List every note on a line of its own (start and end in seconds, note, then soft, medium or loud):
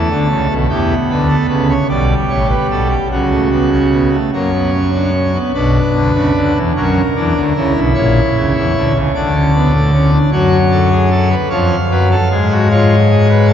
0.00 0.54 A3 medium
0.00 0.54 A4 medium
0.10 0.27 D2 medium
0.10 0.27 D3 medium
0.29 0.47 C#2 medium
0.29 0.47 C#3 medium
0.49 0.67 B1 medium
0.49 0.67 B2 medium
0.69 0.94 E2 medium
0.69 0.95 E3 medium
0.69 1.73 B3 medium
0.69 0.94 G4 medium
1.10 1.35 D2 medium
1.10 1.35 D3 medium
1.10 1.27 B4 medium
1.29 1.47 A4 medium
1.49 1.74 C#2 medium
1.49 1.74 C#3 medium
1.49 1.66 B4 medium
1.70 1.87 C#5 medium
1.88 2.14 B1 medium
1.88 2.14 B2 medium
1.88 2.93 G3 medium
1.88 2.14 D5 medium
2.30 2.55 A1 medium
2.30 2.55 A2 medium
2.30 2.47 C#5 medium
2.49 2.67 B4 medium
2.70 2.95 B1 medium
2.70 2.95 B2 medium
2.70 2.88 A4 medium
2.90 3.08 G4 medium
3.11 4.16 C#2 medium
3.11 4.16 C#3 medium
3.11 3.29 F#3 medium
3.11 4.16 F#4 medium
3.31 3.49 A3 medium
3.52 3.69 B3 medium
3.72 3.90 C#4 medium
3.92 4.10 B3 medium
4.13 4.30 A3 soft
4.33 5.38 F#2 medium
4.33 5.37 F#3 medium
4.33 4.51 A#3 medium
4.33 5.38 C#5 medium
4.53 4.70 B3 medium
4.72 4.90 C#4 medium
4.93 5.11 D4 medium
5.13 5.31 C#4 medium
5.34 5.52 B3 medium
5.54 5.79 B1 medium
5.54 5.79 B2 medium
5.54 6.58 D4 medium
5.54 6.58 B4 medium
5.94 6.12 D2 medium
5.94 6.11 D3 medium
6.15 6.32 C#2 medium
6.15 6.32 C#3 medium
6.34 6.52 D2 medium
6.34 6.52 D3 medium
6.56 6.73 E2 medium
6.56 6.73 E3 medium
6.76 7.01 F#2 medium
6.76 7.01 F#3 medium
6.76 7.01 C#4 medium
6.76 7.79 A#4 medium
7.16 7.33 E2 medium
7.16 7.33 E3 medium
7.16 7.41 D4 medium
7.35 7.53 D2 medium
7.35 7.53 D3 medium
7.56 7.73 C#2 medium
7.56 7.73 C#3 medium
7.56 8.93 E4 medium
7.75 7.93 B1 medium
7.75 7.93 B2 medium
7.94 8.20 A#1 medium
7.94 8.20 A#2 medium
7.94 8.98 C#5 medium
8.36 8.53 C#2 medium
8.36 8.53 C#3 medium
8.56 8.73 E2 medium
8.56 8.73 E3 medium
8.76 8.93 D2 medium
8.76 8.93 D3 medium
8.95 9.12 C#2 medium
8.95 9.12 C#3 medium
9.14 10.17 D2 medium
9.14 10.17 D3 medium
9.14 9.32 D4 medium
9.14 10.17 D5 medium
9.34 9.52 C#4 medium
9.54 9.72 B3 medium
9.74 9.91 A3 medium
9.93 10.11 C#4 medium
10.13 10.30 D4 medium
10.31 11.34 F#2 medium
10.31 11.35 F#3 medium
10.31 10.57 F#4 medium
10.31 11.35 C#5 medium
10.71 10.89 A4 medium
10.91 11.09 G#4 medium
11.11 11.29 A4 medium
11.30 11.48 B4 medium
11.50 11.76 F2 medium
11.50 11.76 F3 medium
11.50 11.75 C#5 loud
11.50 12.53 F5 medium
11.90 12.15 F#2 medium
11.90 12.15 F#3 medium
11.90 12.08 B4 medium
12.11 12.28 A4 medium
12.31 13.53 G#2 medium
12.31 13.53 G#3 medium
12.31 12.48 G#4 medium
12.50 12.68 F#4 medium
12.70 12.95 F4 loud
12.70 13.53 C#5 medium
13.11 13.28 G#4 medium
13.29 13.47 B4 medium
13.48 13.53 A4 loud